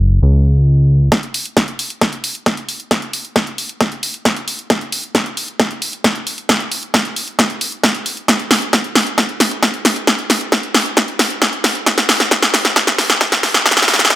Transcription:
Already playing: analog synth bass F#1
0.22 analog synth bass C#2
1.12 kick, snare, closed hi-hat
1.23 closed hi-hat
1.34 open hi-hat
1.46 closed hi-hat
1.57 kick, snare, closed hi-hat
1.68 closed hi-hat
1.79 open hi-hat
1.90 closed hi-hat
2.01 kick, snare, closed hi-hat
2.13 closed hi-hat
2.24 open hi-hat
2.35 closed hi-hat
2.46 kick, snare, closed hi-hat
2.57 closed hi-hat
2.69 open hi-hat
2.80 closed hi-hat
2.91 kick, snare, closed hi-hat
3.02 closed hi-hat
3.13 open hi-hat
3.25 closed hi-hat
3.36 kick, snare, closed hi-hat
3.47 closed hi-hat
3.58 open hi-hat
3.69 closed hi-hat
3.81 kick, snare, closed hi-hat
3.92 closed hi-hat
4.03 open hi-hat
4.14 closed hi-hat
4.25 kick, snare, closed hi-hat
4.36 closed hi-hat
4.48 open hi-hat
4.59 closed hi-hat
4.70 kick, snare, closed hi-hat
4.81 closed hi-hat
4.92 open hi-hat
5.04 closed hi-hat
5.15 kick, snare, closed hi-hat
5.26 closed hi-hat
5.37 open hi-hat
5.48 closed hi-hat
5.60 kick, snare, closed hi-hat
5.71 closed hi-hat
5.82 open hi-hat
5.93 closed hi-hat
6.04 kick, snare, closed hi-hat
6.16 closed hi-hat
6.27 open hi-hat
6.38 closed hi-hat
6.49 kick, snare, closed hi-hat
6.60 closed hi-hat
6.72 open hi-hat
6.83 closed hi-hat
6.94 kick, snare, closed hi-hat
7.05 closed hi-hat
7.16 open hi-hat
7.28 closed hi-hat
7.39 kick, snare, closed hi-hat
7.50 closed hi-hat
7.61 open hi-hat
7.72 closed hi-hat
7.84 kick, snare, closed hi-hat
7.95 closed hi-hat
8.06 open hi-hat
8.17 closed hi-hat
8.28 kick, snare, closed hi-hat
8.40 closed hi-hat
8.51 snare, open hi-hat
8.62 closed hi-hat
8.73 kick, snare, closed hi-hat
8.84 closed hi-hat
8.95 snare, open hi-hat
9.07 closed hi-hat
9.18 kick, snare, closed hi-hat
9.29 closed hi-hat
9.40 snare, open hi-hat
9.51 closed hi-hat
9.63 kick, snare, closed hi-hat
9.74 closed hi-hat
9.85 snare, open hi-hat
9.96 closed hi-hat
10.07 kick, snare, closed hi-hat
10.19 closed hi-hat
10.30 snare, open hi-hat
10.41 closed hi-hat
10.52 kick, snare, closed hi-hat
10.63 closed hi-hat
10.75 snare, open hi-hat
10.86 closed hi-hat
10.97 kick, snare, closed hi-hat
11.08 closed hi-hat
11.19 snare, open hi-hat
11.30 closed hi-hat
11.42 kick, snare, closed hi-hat
11.53 closed hi-hat
11.64 snare, open hi-hat
11.75 closed hi-hat
11.86 kick, snare, closed hi-hat
11.98 snare, closed hi-hat
12.09 snare, open hi-hat
12.20 snare, closed hi-hat
12.31 kick, snare, closed hi-hat
12.43 snare, closed hi-hat
12.54 snare, open hi-hat
12.65 snare, closed hi-hat
12.76 kick, snare, closed hi-hat
12.87 snare, closed hi-hat
12.98 snare, open hi-hat
13.10 snare, closed hi-hat
13.21 kick, snare, closed hi-hat
13.32 snare, closed hi-hat
13.43 snare, open hi-hat
13.54 snare
13.66 kick, snare, closed hi-hat
13.71 snare
13.77 snare, closed hi-hat
13.82 snare
13.88 snare, open hi-hat
13.94 snare
13.99 snare, closed hi-hat
14.05 snare
14.10 kick, snare, closed hi-hat

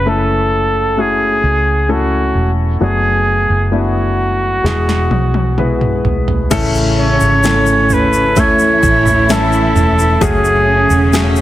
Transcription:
Already playing: fingered electric bass F#1, grand piano C#3 A3 C#4 E4 F#4, flugelhorn B4
0.06 grand piano A3 C#4 E4 A4, flugelhorn A4
0.97 grand piano A3 C#4 E4 F#4, flugelhorn G#4
1.43 fingered electric bass C#2
1.89 grand piano A3 C#4 E4 A4, flugelhorn F#4
2.35 fingered electric bass E1
2.80 fingered electric bass F#1, grand piano F#3 A3 B3 D4 F#4, flugelhorn G#4
3.49 fingered electric bass F#1
3.72 grand piano A3 B3 D4 E4, flugelhorn F#4
4.64 fingered electric bass E1, grand piano B2 G#3 B3 E4 G#4, snare
4.89 snare
5.10 fingered electric bass B1, high tom
5.34 high tom
5.58 grand piano G#3 B3 E4 B4, mid tom
5.81 mid tom
6.05 fingered electric bass B1, floor tom
6.28 floor tom
6.51 fingered electric bass A1, steel-string acoustic guitar A2, cello section C#3 C#4, grand piano C#3 E3 A3 C#4 E4 A4, kick, floor tom, crash, shaker
6.75 shaker
6.99 flugelhorn C#5
7.21 fingered electric bass G#1, shaker
7.44 grand piano A3 C#4 E4 A4, steel-string acoustic guitar A3 C#4 A4, snare, shaker
7.66 shaker
7.90 flugelhorn B4, floor tom, shaker
8.13 shaker
8.36 cello section E3 E4, grand piano A3 C#4 E4 A4, steel-string acoustic guitar A3, flugelhorn C#5, kick, floor tom, shaker
8.59 shaker
8.83 fingered electric bass A1, steel-string acoustic guitar C#4, kick, shaker
9.06 floor tom, shaker
9.29 grand piano A3 C#4 E4 A4, steel-string acoustic guitar A3, flugelhorn A4, snare, shaker
9.52 shaker
9.75 fingered electric bass E1, floor tom, shaker
9.99 shaker
10.21 fingered electric bass F#1, steel-string acoustic guitar F#2, grand piano C#3 A3 C#4 F#4 G#4, cello section C#3 C#4, flugelhorn G#4, kick, floor tom, shaker
10.45 shaker
10.90 fingered electric bass E1, shaker
11.13 grand piano A3 C#4 F#4 G#4, steel-string acoustic guitar A3 C#4 G#4, snare, shaker
11.36 shaker

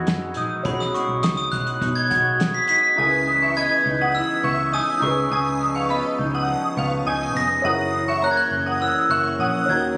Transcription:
Already playing: clean electric guitar E3 D#4 F#4, upright piano B3 D#4 F#4 G#4
0.07 picked electric bass F#2, clean electric guitar G#3, snare, closed hi-hat
0.34 picked electric bass A#1, clean electric guitar D#4, glockenspiel D#6, closed hi-hat
0.63 picked electric bass B1, clean electric guitar B2, upright piano C#4 D#4 F#4, glockenspiel B5, kick, closed hi-hat
0.68 upright piano G#4
0.80 glockenspiel D#6, snare
0.94 clean electric guitar G#3, glockenspiel C#6, closed hi-hat
1.08 picked electric bass B1
1.23 picked electric bass C#2, clean electric guitar D#4, glockenspiel D#6, snare, closed hi-hat
1.37 glockenspiel D#6, closed hi-hat
1.52 picked electric bass B1, clean electric guitar G#3, glockenspiel F#6, kick, closed hi-hat
1.67 closed hi-hat
1.81 picked electric bass B2, clean electric guitar D#4, kick, closed hi-hat
1.96 glockenspiel G#6
2.10 picked electric bass B1, clean electric guitar F#4, glockenspiel G#6, kick, closed hi-hat
2.40 clean electric guitar G#3, snare, closed hi-hat
2.54 glockenspiel B6
2.68 clean electric guitar D#4, glockenspiel B6, closed hi-hat
2.96 picked electric bass C#2, clean electric guitar C#3, upright piano D#4 E4 G#4, synth bell G#5 D#6
3.01 upright piano A#4
3.07 upright piano B4
3.27 clean electric guitar E3
3.42 synth bell E5 C#6
3.57 clean electric guitar B3, synth bell D#5 B5, glockenspiel G#6
3.86 picked electric bass C#2, clean electric guitar D#4
4.01 synth bell F#5 D#6
4.15 clean electric guitar E3, glockenspiel E6
4.43 picked electric bass C#2, clean electric guitar B3, synth bell E5 C#6
4.72 clean electric guitar D#4, synth bell G#5 D#6, glockenspiel D#6
5.00 picked electric bass C#2, clean electric guitar C#3, upright piano D#4 F4 G#4, glockenspiel C#6
5.05 upright piano B4
5.31 picked electric bass C#2, clean electric guitar C#3, synth bell G#5 D#6
5.61 clean electric guitar F3
5.75 synth bell F5 C#6
5.90 clean electric guitar B3, synth bell D#5 B5
6.19 picked electric bass C#2, clean electric guitar D#4
6.35 synth bell F#5 D#6
6.48 clean electric guitar F3
6.76 picked electric bass C#2, clean electric guitar B3, synth bell F5 C#6
7.06 picked electric bass C#2, clean electric guitar D#4, synth bell G#5 D#6
7.35 picked electric bass F1, clean electric guitar B3, glockenspiel A#6
7.62 picked electric bass F#1, clean electric guitar F#2, upright piano C#4 E4 G#4, synth bell F#5 D#6
7.67 upright piano A#4
7.94 clean electric guitar E3
8.08 synth bell E5 C#6
8.22 clean electric guitar A#3, synth bell C#5 A#5, glockenspiel F#6
8.31 glockenspiel G#6
8.37 glockenspiel F#6
8.51 picked electric bass F#1, clean electric guitar C#4
8.66 synth bell F#5 D#6
8.80 clean electric guitar E3, glockenspiel E6
9.09 picked electric bass F#1, clean electric guitar A#3, synth bell E5 C#6, glockenspiel F#6
9.39 picked electric bass A#1, clean electric guitar C#4, synth bell F#5 D#6
9.66 picked electric bass D#2, clean electric guitar D#3, upright piano C#4 D#4 F#4, glockenspiel G#6
9.71 upright piano A#4

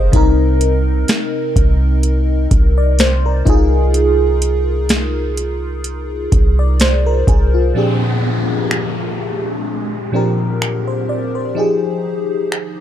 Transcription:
Already playing: 808-style bass F1, fm electric piano A#4 C5 D#5
0.12 808-style bass C2, fm electric piano C3 C4 D#4, kick, closed hi-hat
0.16 fm electric piano A#4
0.61 closed hi-hat
1.08 snare, closed hi-hat
1.56 808-style bass C2, kick, closed hi-hat
2.03 closed hi-hat
2.51 808-style bass C2, kick, closed hi-hat
2.78 fm electric piano D5
2.99 fm electric piano C5, snare, closed hi-hat
3.26 fm electric piano A#4
3.45 808-style bass C2, fm electric piano D#4 F4, kick, closed hi-hat
3.50 fm electric piano G#4
3.94 closed hi-hat
4.42 closed hi-hat
4.89 snare, closed hi-hat
5.37 closed hi-hat
5.84 closed hi-hat
6.32 808-style bass C2, kick, closed hi-hat
6.59 fm electric piano D5
6.80 fm electric piano C5, snare, closed hi-hat
7.06 fm electric piano A#4
7.27 808-style bass C2, fm electric piano G#4, kick, closed hi-hat
7.54 fm electric piano F4
7.74 fm electric piano A#2 F3 C4 D4 G4, downlifter
7.78 fm electric piano G#4
8.71 finger snap
10.12 fm electric piano A#2 F3 C4 D4 G4
10.16 fm electric piano A#4
10.62 finger snap
10.88 fm electric piano C5
11.09 fm electric piano D5
11.35 fm electric piano C5
11.55 fm electric piano F3 D#4 G4
11.59 fm electric piano G#4
12.52 finger snap

